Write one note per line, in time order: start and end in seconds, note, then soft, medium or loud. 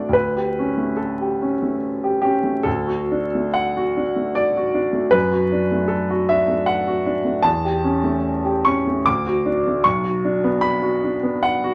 0.00 0.16 A3 soft
0.00 0.16 D4 soft
0.00 0.16 F#4 soft
0.00 0.13 D5 medium
0.00 0.16 F#5 medium
0.09 2.59 D2 soft
0.13 0.98 B4 medium
0.37 0.69 G4 soft
0.59 0.91 C#4 soft
0.77 1.45 A3 soft
0.97 2.23 A4 medium
1.21 1.54 G4 soft
1.42 1.75 C#4 soft
1.62 2.28 A3 soft
2.04 2.20 G4 soft
2.22 2.57 C#4 soft
2.22 2.65 G4 medium
2.43 2.65 A3 soft
2.63 5.10 D2 medium
2.63 3.55 A4 medium
2.87 3.25 F#4 soft
3.12 3.48 D4 soft
3.35 4.02 A3 soft
3.54 4.35 F#5 medium
3.77 4.09 F#4 soft
3.97 4.29 D4 soft
4.16 4.79 A3 soft
4.35 5.14 D5 medium
4.57 4.88 F#4 soft
4.74 5.06 D4 soft
4.93 5.13 A3 soft
5.11 7.41 F#2 medium
5.11 5.91 B4 medium
5.32 5.65 F#4 soft
5.52 5.84 D4 soft
5.71 6.35 A3 soft
5.88 6.29 A4 medium
6.10 6.42 F#4 soft
6.29 6.62 D4 soft
6.29 6.68 E5 medium
6.48 7.10 A3 soft
6.66 7.44 F#5 medium
6.87 7.19 F#4 soft
7.06 7.38 D4 soft
7.25 7.45 A3 soft
7.42 9.01 E2 medium
7.42 8.64 A5 medium
7.65 7.97 G4 soft
7.84 8.17 C#4 soft
8.04 8.69 A3 soft
8.45 8.77 G4 soft
8.65 8.98 C#4 soft
8.65 9.05 C#6 medium
8.87 9.07 A3 soft
9.06 9.83 D2 medium
9.06 9.85 D6 medium
9.27 9.58 F#4 soft
9.46 9.77 D4 soft
9.67 9.86 A3 soft
9.84 11.74 B1 medium
9.84 10.63 C#6 medium
10.04 10.36 F#4 soft
10.25 10.56 D4 soft
10.44 11.08 B3 soft
10.61 11.43 B5 medium
10.82 11.15 F#4 soft
11.04 11.36 D4 soft
11.23 11.74 B3 soft
11.43 11.74 F#5 medium
11.64 11.74 F#4 soft